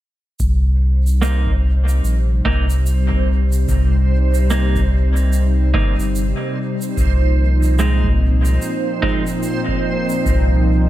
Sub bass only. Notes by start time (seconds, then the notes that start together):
0.40 C2
2.04 A#1
2.45 C2
3.69 C2
5.74 G1
5.98 G1
6.97 C2
10.26 C2